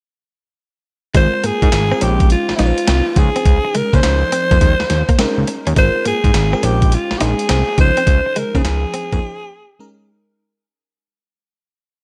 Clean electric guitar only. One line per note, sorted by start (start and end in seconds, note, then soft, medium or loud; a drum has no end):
1.15 1.29 G#3 medium
1.34 muted clean electric guitar stroke soft
1.44 1.58 A#3 medium
1.73 muted clean electric guitar stroke soft
1.92 1.99 C4 medium
2.01 2.16 C#4 medium
2.59 2.74 D#4 medium
2.88 3.03 C4 medium
3.17 muted clean electric guitar stroke soft
3.36 3.44 C4 medium
3.65 muted clean electric guitar stroke soft
3.75 3.89 G#3 medium
3.94 4.01 A#3 medium
4.04 muted clean electric guitar stroke soft
4.32 4.47 C4 medium
4.51 4.59 A#3 medium
4.61 4.76 G#3 medium
4.80 muted clean electric guitar stroke soft
5.09 5.17 A#3 medium
5.19 5.34 C4 medium
5.48 muted clean electric guitar stroke soft
5.67 5.74 C#4 medium
5.77 5.91 G#3 medium
5.96 muted clean electric guitar stroke soft
6.06 6.20 A#3 medium
6.34 muted clean electric guitar stroke soft
6.53 6.61 C4 medium
6.63 6.78 C#4 medium
7.21 7.35 D#4 medium
7.50 7.64 C4 medium
7.79 muted clean electric guitar stroke soft
7.97 8.05 C4 medium
8.26 muted clean electric guitar stroke soft
8.36 8.51 G#3 medium
8.55 8.63 A#3 medium
8.65 muted clean electric guitar stroke soft
8.94 9.08 C4 medium
9.13 9.20 A#3 medium